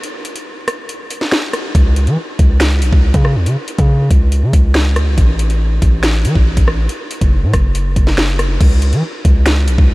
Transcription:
0.03 closed hi-hat
0.25 closed hi-hat
0.36 closed hi-hat
0.68 cross-stick, closed hi-hat
0.89 closed hi-hat
1.11 closed hi-hat
1.21 snare
1.31 finger snap, snare
1.53 cross-stick, closed hi-hat
1.75 C#2, kick, closed hi-hat
1.96 closed hi-hat
2.07 E3, closed hi-hat
2.39 C#2, kick, closed hi-hat
2.60 finger snap, snare, closed hi-hat
2.82 B1, closed hi-hat
2.93 C#2, kick
3.14 C#3, kick, closed hi-hat
3.25 cross-stick
3.36 E2
3.46 C#3, closed hi-hat
3.68 closed hi-hat
3.78 C#3, kick, closed hi-hat
4.11 C#2, kick, closed hi-hat
4.32 closed hi-hat
4.43 C#3
4.53 C#2, kick, closed hi-hat
4.74 finger snap, snare
4.96 D2, cross-stick, closed hi-hat
5.07 C#2
5.18 A1, kick, closed hi-hat
5.39 closed hi-hat
5.50 closed hi-hat
5.82 A1, kick, closed hi-hat
6.03 finger snap, snare, closed hi-hat
6.25 E3, closed hi-hat
6.35 A1, kick
6.57 A1, kick, closed hi-hat
6.68 cross-stick
6.89 closed hi-hat
7.11 closed hi-hat
7.21 F#1, kick, closed hi-hat
7.43 A2
7.53 F#1, kick, cross-stick, closed hi-hat
7.75 closed hi-hat
7.96 F#1, kick, closed hi-hat
8.07 snare
8.17 finger snap, snare
8.39 cross-stick, closed hi-hat
8.61 C#2, kick, closed hi-hat, crash
8.82 closed hi-hat
8.93 E3, closed hi-hat
9.25 C#2, kick, closed hi-hat
9.46 finger snap, snare, closed hi-hat
9.68 B1, closed hi-hat
9.78 C#2, kick

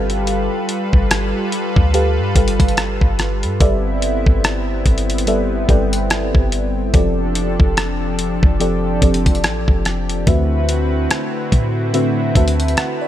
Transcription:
Already playing: G1 G3 F4 G4 A4 B4 F5 G5
0.10 closed hi-hat
0.27 closed hi-hat
0.69 closed hi-hat
0.93 G1, kick
1.11 cross-stick, closed hi-hat
1.52 closed hi-hat
1.76 D2, kick
1.93 G3 G4 A4 B4 F5, closed hi-hat
2.18 G2
2.35 G1 G3 G4 A4 B4 F5, kick, closed hi-hat
2.48 closed hi-hat
2.60 kick, closed hi-hat
2.68 closed hi-hat
2.77 cross-stick, closed hi-hat
3.01 G1, kick
3.19 cross-stick, closed hi-hat
3.43 G2, closed hi-hat
3.60 G1 G3 B3 C4 E4 G4 A4 B4 D5 E5, kick, closed hi-hat
4.02 closed hi-hat
4.26 G1, kick
4.44 cross-stick, closed hi-hat
4.86 G1, kick, closed hi-hat
4.98 closed hi-hat
5.10 closed hi-hat
5.18 closed hi-hat
5.27 G3 G4 A4 B4 D5 E5, closed hi-hat
5.68 G1 G3 G4 A4 B4 D5 G5, kick, closed hi-hat
5.93 closed hi-hat
6.10 cross-stick, closed hi-hat
6.35 G1, kick
6.52 closed hi-hat
6.93 F1 F3 C4 D4 G4 A4 D5, kick, closed hi-hat
7.35 closed hi-hat
7.60 F1, kick
7.77 cross-stick, closed hi-hat
8.19 closed hi-hat
8.43 F1, kick
8.60 F3 C4 G4 A4 D5, closed hi-hat
9.01 F1 F3 C4 G4 A4 D5, kick, closed hi-hat
9.14 closed hi-hat
9.26 kick, closed hi-hat
9.35 closed hi-hat
9.44 A1, cross-stick, closed hi-hat
9.68 F1, kick
9.85 cross-stick, closed hi-hat
10.09 closed hi-hat
10.26 D2 D3 A3 C4 E4 F#4 B4 E5, kick, closed hi-hat
10.69 closed hi-hat
11.11 cross-stick, closed hi-hat
11.52 A2, kick, closed hi-hat
11.93 D3 A3 C4 F#4 B4 E5, closed hi-hat
12.35 D2 D3 A3 C4 F#4 B4 E5 A5, kick, closed hi-hat
12.48 closed hi-hat
12.60 closed hi-hat
12.68 closed hi-hat
12.77 F#5, cross-stick, closed hi-hat
13.01 D5

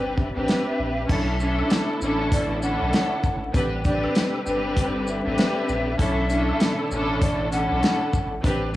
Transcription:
Already playing: G1 C4 D4 G4 B4
0.18 E5, kick
0.35 A1 C4 D4 G4 B4
0.48 snare, closed hi-hat
0.79 A#1
1.07 B1 D3 A3 B3 C#4 D4 E4 A4 E5, kick, crash, shaker
1.40 C#4 D4 E4 A4, shaker
1.59 high woodblock
1.70 snare, closed hi-hat, shaker
1.89 high woodblock
2.01 A1 C#4 D4 E4 A4, shaker
2.32 D5, kick, closed hi-hat, shaker
2.62 C#4 D4 E4 A4 F#5, shaker
2.81 B1
2.93 snare, closed hi-hat, shaker
3.23 G#1, kick, shaker
3.53 A1 C3 D3 G3 C4 D4 G4 B4, kick, closed hi-hat, shaker
3.84 C4 D4 G4 B4 D5, kick, closed hi-hat, shaker
4.04 high woodblock
4.15 snare, closed hi-hat, shaker
4.34 high woodblock
4.45 G1 C4 D4 G4 B4, shaker
4.76 kick, closed hi-hat, shaker
5.07 E5, shaker
5.25 A1 C4 D4 G4 B4
5.38 snare, closed hi-hat, shaker
5.68 A#1, shaker
5.97 B1 B2 E3 A3 C#4 D4 E4 A4 E5, kick, closed hi-hat, shaker
6.29 C#4 D4 E4 A4, closed hi-hat, shaker
6.49 high woodblock
6.60 snare, closed hi-hat, shaker
6.79 high woodblock
6.91 A1 C#4 D4 E4 A4, shaker
7.21 D5, kick, closed hi-hat, shaker
7.51 C#4 D4 E4 A4 F#5, closed hi-hat, shaker
7.71 B1
7.83 snare, closed hi-hat, shaker
8.13 G#1, kick, shaker
8.43 A1 C3 G3 C4 D4 G4 B4, kick, closed hi-hat, shaker

